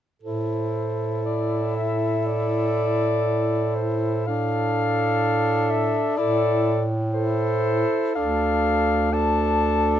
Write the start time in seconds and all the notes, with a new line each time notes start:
0.22 A2 E4 A4 C5
1.25 D5
1.75 E5
2.26 D5
3.75 C5
4.26 D4 A4 F5
5.70 E5
6.17 A2 E4 A4 D5
7.13 E4 A4 C5
8.15 D2 D4 A4 F5
9.12 D4 A4 A5